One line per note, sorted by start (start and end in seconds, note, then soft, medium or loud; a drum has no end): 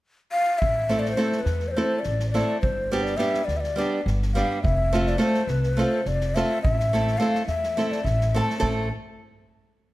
0.32 0.60 F5 loud
0.58 1.01 E5 medium
0.58 kick medium
0.62 1.13 A1 medium
0.89 1.12 A3 medium
0.89 1.12 C4 soft
0.89 1.12 E4 medium
0.89 1.12 A4 medium
0.89 snare soft
0.99 1.11 D5 medium
1.05 snare soft
1.11 1.41 C5 medium
1.17 1.39 A3 medium
1.17 1.39 C4 soft
1.17 1.40 E4 soft
1.17 1.40 A4 medium
1.17 snare soft
1.32 snare soft
1.40 1.70 B4 medium
1.45 1.81 E2 medium
1.45 snare soft
1.59 snare soft
1.68 2.00 C5 medium
1.68 1.72 D5 medium
1.76 1.98 A3 soft
1.76 1.98 C4 soft
1.76 1.99 E4 medium
1.76 1.99 A4 medium
1.99 2.29 D5 medium
2.03 2.40 A1 medium
2.03 snare soft
2.19 snare soft
2.30 2.58 D5 medium
2.34 2.57 A3 medium
2.34 2.57 C4 medium
2.34 2.57 E4 medium
2.34 2.57 A4 medium
2.34 snare soft
2.61 3.14 G1 medium
2.61 3.05 C5 medium
2.61 kick medium
2.92 3.14 G3 medium
2.92 3.13 B3 medium
2.92 3.14 D4 medium
2.92 3.14 G4 medium
2.92 snare soft
3.03 3.19 D5 medium
3.03 snare soft
3.17 3.40 G3 medium
3.17 3.41 B3 soft
3.17 3.41 D4 soft
3.17 3.41 G4 medium
3.17 3.46 E5 medium
3.17 snare soft
3.34 snare soft
3.45 3.82 D2 medium
3.45 3.58 D5 medium
3.45 snare soft
3.57 4.04 D5 medium
3.57 3.62 E5 medium
3.63 snare soft
3.76 3.99 G3 soft
3.76 3.99 B3 medium
3.76 4.00 D4 medium
3.76 4.00 G4 medium
3.76 snare soft
4.06 4.41 G1 medium
4.06 snare soft
4.22 snare soft
4.34 4.57 G3 medium
4.34 4.58 B3 medium
4.34 4.58 D4 medium
4.34 4.58 G4 medium
4.34 4.60 F5 medium
4.34 snare soft
4.63 5.14 F1 medium
4.63 5.09 E5 medium
4.63 kick loud
4.93 5.14 A3 medium
4.93 5.14 C4 medium
4.93 5.15 F4 medium
4.93 5.16 A4 medium
4.93 snare soft
5.07 5.21 D5 medium
5.07 snare soft
5.18 5.41 A3 medium
5.18 5.41 C4 soft
5.18 5.41 F4 medium
5.18 5.41 A4 medium
5.18 5.50 C5 medium
5.18 snare soft
5.34 snare soft
5.47 5.82 C2 medium
5.47 5.82 B4 medium
5.47 snare soft
5.63 snare soft
5.77 5.99 A3 medium
5.77 6.00 C4 medium
5.77 6.00 F4 medium
5.77 6.00 A4 medium
5.77 6.08 C5 medium
5.77 snare soft
6.05 6.41 F1 medium
6.05 6.36 D5 medium
6.05 snare soft
6.20 snare soft
6.35 6.58 A3 medium
6.35 6.58 C4 medium
6.35 6.58 F4 medium
6.35 6.58 A4 medium
6.35 6.61 E5 medium
6.35 snare soft
6.62 7.14 A1 medium
6.62 7.19 E5 medium
6.62 kick medium
6.79 snare soft
6.93 7.14 A3 medium
6.93 7.15 C4 soft
6.93 7.15 E4 medium
6.93 7.15 A4 medium
6.93 snare soft
7.07 snare soft
7.18 7.41 A3 medium
7.18 7.42 C4 medium
7.18 7.42 E4 soft
7.18 7.46 F5 medium
7.18 snare soft
7.22 7.42 A4 medium
7.35 snare soft
7.46 7.82 E2 medium
7.46 7.93 E5 medium
7.46 snare soft
7.63 snare soft
7.77 7.99 A3 medium
7.77 7.99 C4 medium
7.77 7.99 E4 medium
7.77 8.00 A4 medium
7.77 snare soft
7.91 8.06 D5 medium
7.91 snare soft
8.04 8.39 A1 medium
8.04 8.39 E5 medium
8.04 kick medium
8.04 snare soft
8.21 snare soft
8.34 8.56 A3 medium
8.34 8.57 C4 soft
8.34 8.57 E4 soft
8.34 8.57 A4 medium
8.34 8.58 A5 medium
8.34 snare soft
8.50 snare soft
8.58 8.88 A3 medium
8.58 8.88 C4 medium
8.58 8.88 E4 medium
8.58 8.88 A4 medium
8.58 8.87 A5 medium
8.63 8.89 A1 medium
8.63 kick medium